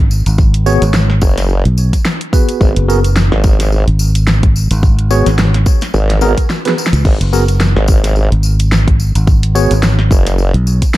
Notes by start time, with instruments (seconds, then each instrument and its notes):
Already playing: fingered electric bass G#1
0.11 tambourine
0.26 fingered electric bass G#1, closed hi-hat, tambourine
0.38 kick, tambourine
0.54 closed hi-hat
0.66 tine electric piano B3 F#4 G#4 C#5, tambourine
0.82 fingered electric bass G#1, closed hi-hat, tambourine
0.94 snare, tambourine
1.10 snare
1.21 wobble bass F#1, kick, tambourine
1.38 snare, closed hi-hat, tambourine
1.50 tambourine
1.65 fingered electric bass B1, closed hi-hat
1.78 tambourine
1.93 kick, closed hi-hat, tambourine
2.05 snare, tambourine
2.21 closed hi-hat
2.33 tine electric piano B3 F#4 G#4 B4, kick, tambourine
2.49 closed hi-hat, tambourine
2.61 wobble bass G#1, kick, tambourine
2.76 fingered electric bass F#1, closed hi-hat
2.88 tine electric piano B3 F#4 G#4 A#4, tambourine
3.04 closed hi-hat, tambourine
3.16 snare, tambourine
3.32 wobble bass G#1, snare
3.44 kick, tambourine
3.60 snare, closed hi-hat, tambourine
3.72 tambourine
3.87 fingered electric bass G#1, closed hi-hat
3.99 tambourine
4.15 closed hi-hat, tambourine
4.27 snare, tambourine
4.43 kick, closed hi-hat
4.56 tambourine
4.71 fingered electric bass G#1, closed hi-hat, tambourine
4.83 kick, tambourine
4.99 closed hi-hat
5.11 tine electric piano B3 F#4 G#4 C#5, tambourine
5.26 fingered electric bass G#1, snare, closed hi-hat, tambourine
5.39 snare, tambourine
5.54 snare, closed hi-hat
5.66 kick, tambourine
5.81 snare, closed hi-hat, tambourine
5.94 wobble bass G#1, tambourine
6.10 snare, closed hi-hat
6.21 tine electric piano B3 F#4 G#4 A#4, tambourine
6.37 kick, closed hi-hat, tambourine
6.50 snare, tambourine
6.65 tine electric piano B3 F#4 G#4 B4, snare, closed hi-hat
6.78 tambourine
6.86 snare
6.93 fingered electric bass C#2, closed hi-hat, tambourine
7.05 wobble bass G#1, kick, crash, tambourine
7.21 fingered electric bass F#1, closed hi-hat
7.33 tine electric piano B3 F#4 G#4 A#4, tambourine
7.48 closed hi-hat, tambourine
7.60 snare, tambourine
7.76 wobble bass G#1, snare
7.88 kick, tambourine
8.04 snare, closed hi-hat, tambourine
8.16 tambourine
8.32 fingered electric bass G#1, closed hi-hat
8.43 tambourine
8.59 closed hi-hat, tambourine
8.72 snare, tambourine
8.88 kick, closed hi-hat
9.00 tambourine
9.15 fingered electric bass G#1, closed hi-hat, tambourine
9.27 kick, tambourine
9.43 closed hi-hat
9.55 tine electric piano B3 F#4 G#4 C#5, tambourine
9.71 fingered electric bass G#1, closed hi-hat, tambourine
9.83 snare, tambourine
9.99 snare
10.11 wobble bass F#1, kick, tambourine
10.27 snare, closed hi-hat, tambourine
10.38 tambourine
10.54 fingered electric bass B1, closed hi-hat
10.67 tambourine
10.82 kick, closed hi-hat, tambourine
10.94 snare